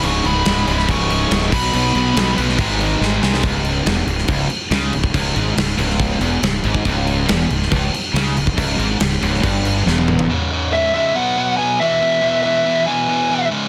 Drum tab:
CC |x-x-x-x-x-x-x-x-|x-x-x-x-x-x-----|x-x-x-x-x-x-x-x-|x-x-x-x-x-x-x-x-|
SD |----o--o----o---|----o--o----o-oo|----oo-o----o---|----o--o----o---|
T1 |----------------|----------------|----------------|----------------|
T2 |----------------|----------------|----------------|----------------|
FT |----------------|----------------|----------------|----------------|
BD |--------o-----o-|--------o-------|o-------o------o|o-------o------o|

CC |x-x-x-x-x-x-x-x-|x-x-x-x-x-x-----|----------------|----------------|
SD |----oo-o----o---|----oo-o----o---|----------------|----------------|
T1 |----------------|-------------o--|----------------|----------------|
T2 |----------------|--------------o-|----------------|----------------|
FT |----------------|---------------o|----------------|----------------|
BD |o-------o------o|o-------o-------|----------------|----------------|